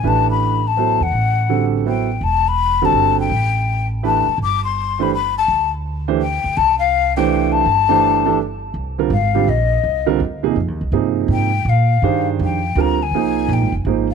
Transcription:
0.03 A1 E3 A3 D4 G4 B4
0.08 A5
0.30 B5
0.67 A5
0.77 F#3 B3 E4 A4 C5
1.00 E2 F#5
1.11 A1
1.49 D3 G3 C4 F#4 A4
1.86 F#3 B3 E4 A4 C5 G5
2.21 E1 A5
2.48 B5
2.82 D3 G3 C4 F#4 A4 A5
2.92 G1
3.20 G5
3.30 A1
4.03 E3 A3 D4 G4 B4 A5
4.27 muted upright bass stroke
4.38 G1
4.43 D6
4.64 C6
4.99 E3 A3 D4 G4 C5 B5
5.14 B5
5.38 A5
5.48 D2
6.08 E3 A3 D4 G4 C5
6.22 G5
6.44 D2
6.57 C2 A5
6.79 F5
7.16 E3 A3 D4 G4 C5 G5
7.52 A5
7.66 G1
7.89 E3 A3 D4 G4 C5
8.25 E3 A3 D4 G4 A4
8.74 C2
8.98 D3 G3 C4 F4 A#4
9.10 G#1 F5
9.35 D3 G3 C4 F4 G4
9.47 A#1 D#5
9.84 C2
10.06 D3 G3 C4 F4 A#4
10.20 D2
10.43 C3 F3 A#3 D#4 G#4
10.56 F2
10.68 D#2
10.81 C2
10.92 G2 C3 F3 A#3 D#4 G#4
11.28 G#2
11.32 G5
11.65 A#2
11.69 F5
12.02 G2 D#3 D4 G4 G#4 C5
12.39 F2
12.43 G5
12.75 D2 D3 G3 C4 F4 A#4
12.81 A#5
13.02 G#5
13.11 C2 F3 A#3 D#4
13.15 G#4 C5
13.48 A#1
13.53 G5
13.61 G#1
13.72 F1
13.85 G#1 F3 A#3 D#4 G#4 C5

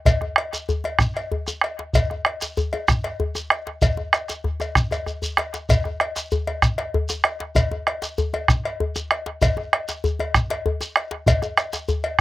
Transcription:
0.05 bombo low, cowbell, djembe slap, djembe bass, shekere
0.21 bombo rim, djembe tone
0.36 bombo rim, cowbell
0.53 bombo rim, djembe slap, shekere
0.69 djembe bass, shekere
0.84 cowbell, djembe tone
0.99 bombo rim, bombo low, shekere
1.17 cowbell
1.32 djembe bass
1.47 bombo rim, djembe slap, djembe tone, shekere
1.61 bombo rim, cowbell
1.79 djembe slap
1.93 bombo low, cowbell, djembe slap, djembe bass, shekere
2.10 bombo rim, djembe tone
2.25 bombo rim, cowbell
2.41 bombo rim, djembe slap, shekere
2.57 djembe bass, shekere
2.73 cowbell, djembe tone
2.88 bombo rim, bombo low, shekere
3.04 cowbell, djembe slap
3.20 djembe bass
3.35 bombo rim, djembe slap, djembe tone, shekere
3.50 bombo rim, cowbell
3.67 djembe slap
3.82 bombo low, cowbell, djembe slap, djembe bass, shekere
3.97 djembe tone
4.13 bombo rim, cowbell, shekere
4.28 bombo rim, djembe slap, shekere
4.44 djembe slap, djembe bass
4.60 bombo rim, cowbell, djembe tone, shekere
4.75 bombo rim, bombo low, djembe slap, shekere
4.91 cowbell, djembe bass, shekere
5.06 bombo rim, djembe bass, shekere
5.22 djembe bass, shekere
5.37 bombo rim, cowbell, djembe slap
5.53 bombo rim, djembe slap, shekere
5.69 bombo low, cowbell, djembe slap, djembe bass, shekere
5.84 bombo rim, djembe tone
6.00 bombo rim, cowbell
6.16 bombo rim, djembe slap, shekere
6.31 djembe bass, shekere
6.47 cowbell, djembe tone
6.62 bombo rim, bombo low, shekere
6.78 cowbell, djembe slap
6.94 djembe bass
7.09 bombo rim, djembe slap, djembe tone, shekere
7.24 bombo rim, cowbell
7.40 djembe slap
7.55 bombo low, cowbell, djembe slap, djembe bass, shekere
7.71 djembe tone
7.87 bombo rim, cowbell
8.02 bombo rim, djembe slap, shekere
8.18 djembe bass, shekere
8.34 cowbell, djembe tone
8.48 bombo rim, bombo low, shekere
8.65 cowbell
8.80 djembe bass
8.95 bombo rim, djembe slap, djembe tone, shekere
9.11 bombo rim, cowbell
9.26 djembe slap
9.42 bombo low, cowbell, djembe slap, djembe bass, shekere
9.57 bombo rim, djembe tone
9.73 bombo rim, cowbell
9.89 bombo rim, djembe slap, shekere
10.04 djembe bass, shekere
10.19 cowbell, djembe tone
10.34 bombo rim, bombo low, shekere
10.50 cowbell, djembe slap
10.66 djembe bass
10.81 bombo rim, djembe slap, djembe tone, shekere
10.96 bombo rim, cowbell
11.11 djembe slap
11.26 bombo low, cowbell, djembe slap, djembe bass, shekere
11.42 bombo rim, djembe tone, shekere
11.57 bombo rim, cowbell, shekere
11.73 bombo rim, djembe slap, shekere
11.88 djembe bass, shekere
12.04 cowbell

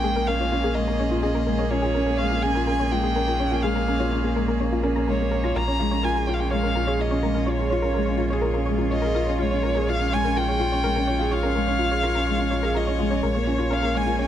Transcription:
Already playing: A#1 A#2 G#3 A#3 C#4 F4 G#4 G5
0.03 G#3 G#4
0.15 A#3 A#4
0.27 C#4 A#4 F5
0.40 F4 C#5
0.52 C#4 F4
0.64 A#3 G#4
0.74 G#3 A#4 D#5
0.88 A#3 A#4
0.99 C#4 C#5
1.11 F4
1.22 C#4 G#4 D#5
1.35 A#3 A#4
1.47 G#3 A#4
1.59 A#3 C#5
1.71 C#4 F4 C#5
1.82 F4 G#4
1.95 C#4 A#4
2.06 A#3 A#4
2.17 G#3 C#5 F5
2.31 A#3 F4
2.42 C#4 G#4 G#5
2.55 F4 A#4
2.66 C#4 A#4 G#5
2.80 A#3 C#5
2.91 G#3 F4 G5
3.04 A#3 G#4
3.16 C#4 A#4
3.28 F4 A#4
3.40 C#4 C#5
3.51 A#3 F4
3.63 G#3 G#4 F5
3.76 A#3 A#4
3.88 C#4 A#4
4.00 F4 C#5
4.12 C#4 F4
4.24 A#3 G#4
4.36 G#3 A#4
4.47 A#3 A#4
4.60 C#4 C#5
4.72 F4
4.83 C#4 A#4
4.96 A#3 A#5
5.07 G#3 A#4 C#5
5.20 A#3
5.31 C#4 A#4
5.44 F4 A#5
5.56 A#1 F4 A#4 A#5
5.68 C#4 C#5
5.80 G#3 F4
5.91 C#4 C#5
6.03 F4 A#4 G#5
6.15 G#4 A#4
6.27 F4 C#5 G5
6.33 C#5 F5
6.40 C#4 F4 G5
6.51 G#3 C#5 F5
6.63 C#4 A#4
6.75 F4 A#4
6.87 G#4 C#5
6.99 F4 D#5
7.11 C#4 C#5
7.23 G#3 A#4
7.35 C#4 A#4
7.46 F4 C#5
7.59 F4 G#4
7.70 F4 C#5
7.82 C#4 A#4
7.94 G#3 A#4
8.06 C#4 C#5
8.18 F4
8.30 G#4 C#5
8.42 F4 A#4
8.54 C#4 A#4
8.66 G#3 C#5
8.78 C#4 F4
8.91 F4 C#5 D#5
9.02 G#4 A#4
9.15 F4 A#4
9.26 C#4 C#5
9.39 G#3 F4 C#5
9.51 C#4 C#5
9.63 F4 A#4
9.75 G#4 A#4
9.87 F4 C#5 F5
10.00 C#4 F4
10.12 G#3 C#5 G#5
10.24 C#4 A#4
10.36 F4 A#4 G5
10.48 G#4 C#5
10.60 F4
10.72 C#4 C#5
10.84 G#3 A#4
10.96 C#4 A#4
11.07 F4 C#5
11.19 F4 G#4
11.31 F4 C#5 F5
11.43 C#4 A#4
11.55 G#3 A#4
11.67 C#4 C#5
11.79 F4
11.91 G#4 C#5
12.03 F4 A#4
12.15 C#4 A#4
12.27 G#3 C#5
12.38 C#4 F4
12.51 F4 C#5
12.63 G#4 A#4
12.75 F4 A#4 D#5
12.87 C#4 C#5
12.99 G#3 F4
13.11 C#4 C#5
13.23 A#1 A#2 G#3 A#4 C#5
13.35 A#3 C#5
13.41 G#4
13.47 C#4 F4
13.58 F4 C#5
13.70 C#4 A#4 F5
13.82 A#3 A#4
13.95 G#3 C#5 G#5
14.07 A#3 F4
14.19 C#4 C#5 G#5

